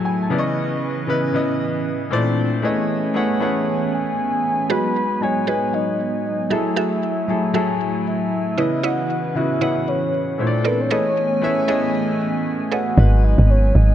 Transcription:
Already playing: analog synth pad F#3 A3 E4 G#5, grand piano F#3 E4 G#4 A4 B4 E5 F#5 G#5
0.05 grand piano G#5
0.22 grand piano A5
0.30 grand piano C#3 B3 E4 D5, analog synth pad E3 C#4 B4 D#5
0.38 grand piano D#5 C#6
1.07 grand piano C#3 B3 E4 B4
1.33 grand piano C#3 B3 E4 D#5
2.11 grand piano A#2 A3 E4 C5 D5, analog synth pad A#2 C4 D4 A4
2.62 analog synth pad E3 A3 B3 C#4 G#5, grand piano A3 E4 G#4 B4 C#5 D#5
3.14 grand piano A3 E4 G#4 B4 C#5 F#5
3.40 grand piano A3 E4 G#4 B4 C#5 F#5
3.93 soft synth lead G#5
4.69 analog synth pad F#3, grand piano G#3 D#4 F#4 B4, synth pluck F#4 G#4 B4, soft synth lead B5
5.21 grand piano G#3 D#4 F#4 C#5, soft synth lead G#5
5.47 grand piano G#3 D#4 F#4 B4, synth pluck F#4 G#4 B4
5.73 soft synth lead D#5
6.25 soft synth lead D#5
6.50 grand piano F#3 E4 G#4 A4, analog synth pad A3 E4, synth pluck F#4 G#4 A4 E5, soft synth lead E5
6.76 synth pluck F#4 G#4 A4 E5, soft synth lead E5
7.28 grand piano F#3 E4 G#4 A4
7.53 grand piano F#3 E4 G#4 A4, synth pluck F#4 G#4 A4 E5
8.07 soft synth lead E5
8.57 grand piano C#3 B3 E4 D#5, analog synth pad E3 C#4 E4 B4, synth pluck E4 B4 C#5 D#5
8.83 synth pluck E4 B4 C#5 D#5, soft synth lead F#5
9.34 grand piano C#3 B3 E4 F#4, soft synth lead E5
9.60 grand piano C#3 B3 E4 F#5, synth pluck E4 B4 C#5 D#5
9.88 soft synth lead C#5
10.38 grand piano A#2 A3 E4 C5 C#5, analog synth pad A#2 C4 D4 A4
10.47 grand piano D5
10.64 synth pluck E4 A4 A#4 C5 D5, soft synth lead B4
10.80 soft synth lead C#5
10.90 analog synth pad E3 A3 B3 C#4 G#5, grand piano A3 E4 G#4 B4 C#5 D#5, synth pluck G#4 A4 B4 C#5 D#5
11.41 grand piano A3 E4 G#4 B4 C#5 E5
11.67 grand piano A3 E4 G#4 B4 C#5 D#5, synth pluck G#4 A4 B4 C#5 D#5
12.71 synth pluck G#4 A4 B4 C#5 D#5, soft synth lead F#5
12.97 log drum bass G#1, analog synth pad F#3 B3 G#5, grand piano G#3 D#4 F#4 B4
13.24 soft synth lead D#5
13.38 log drum bass G#1
13.50 soft synth lead C#5
13.75 log drum bass G#1, soft synth lead D#5

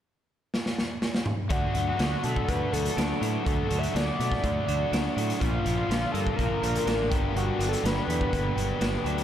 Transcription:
0.54 snare
0.66 snare
0.78 snare
1.02 snare
1.15 snare
1.26 mid tom
1.49 fingered electric bass D2, overdriven electric guitar D3 A3 D4 F#4, analog synth lead F#4, kick, closed hi-hat
1.74 fingered electric bass D2, overdriven electric guitar F#3 D4 F#4, closed hi-hat
1.89 analog synth lead F#4
1.97 fingered electric bass D2, overdriven electric guitar D3 A3 D4 F#4, snare, closed hi-hat
2.24 fingered electric bass B2, overdriven electric guitar A3, analog synth lead A4, closed hi-hat
2.36 kick
2.48 fingered electric bass D2, overdriven electric guitar D3, analog synth lead B4, kick, closed hi-hat
2.72 fingered electric bass D2, overdriven electric guitar F#3 D4 F#4, analog synth lead A4, closed hi-hat
2.85 closed hi-hat
2.96 fingered electric bass D2, overdriven electric guitar A3 D4 F#4, snare, closed hi-hat
3.21 fingered electric bass A2, overdriven electric guitar F#3 D4 F#4, closed hi-hat
3.44 fingered electric bass D2, overdriven electric guitar D3 A3 D4 F#4, analog synth lead A4, kick, closed hi-hat
3.69 fingered electric bass D2, overdriven electric guitar F#3 D4 F#4, closed hi-hat
3.78 analog synth lead E5
3.83 closed hi-hat
3.93 fingered electric bass D2, overdriven electric guitar D3 A3 D4 F#4, analog synth lead D5, snare, closed hi-hat
4.20 fingered electric bass B2, overdriven electric guitar A3, closed hi-hat
4.32 kick, snare
4.44 fingered electric bass D2, overdriven electric guitar D3, kick, closed hi-hat
4.67 fingered electric bass D2, overdriven electric guitar F#3 D4 F#4, closed hi-hat
4.92 fingered electric bass D2, overdriven electric guitar A3 D4 F#4, snare, closed hi-hat
5.16 fingered electric bass A2, overdriven electric guitar F#3 D4 F#4, closed hi-hat
5.30 closed hi-hat
5.40 fingered electric bass A#1, overdriven electric guitar A#2 F3 A#3 D4 F4, analog synth lead F4, kick, closed hi-hat
5.64 fingered electric bass A#1, overdriven electric guitar F3 A#3 D4 F4, closed hi-hat
5.77 analog synth lead F4
5.88 fingered electric bass A#1, overdriven electric guitar D3 F3 A#3 D4 F4, snare, closed hi-hat
6.12 fingered electric bass G2, overdriven electric guitar A#3, analog synth lead A4, closed hi-hat
6.27 kick
6.36 fingered electric bass A#1, overdriven electric guitar D3, analog synth lead A#4, kick, closed hi-hat
6.60 fingered electric bass A#1, overdriven electric guitar F3 A#3 D4 F4, analog synth lead A#4, closed hi-hat
6.75 closed hi-hat
6.86 fingered electric bass A1, overdriven electric guitar F3 A#3 D4 F4, snare, closed hi-hat
7.10 fingered electric bass G1, overdriven electric guitar G2 B3 D4 G4, kick, closed hi-hat
7.34 fingered electric bass G1, overdriven electric guitar G2 B3 D4 G4, analog synth lead F#4, closed hi-hat
7.58 fingered electric bass G1, overdriven electric guitar F#3 D4 G4, closed hi-hat
7.69 analog synth lead A4
7.73 closed hi-hat
7.83 fingered electric bass G1, overdriven electric guitar D3 B3 D4 G4, analog synth lead B4, snare, closed hi-hat
8.07 fingered electric bass E2, overdriven electric guitar B3, closed hi-hat
8.21 kick
8.33 fingered electric bass G1, overdriven electric guitar D3, kick, closed hi-hat
8.56 fingered electric bass G1, overdriven electric guitar F#3 D4 G4, closed hi-hat
8.80 fingered electric bass G1, overdriven electric guitar B3 D4 G4, snare, closed hi-hat
9.04 fingered electric bass D2, overdriven electric guitar F#3 D4 G4, closed hi-hat
9.18 closed hi-hat

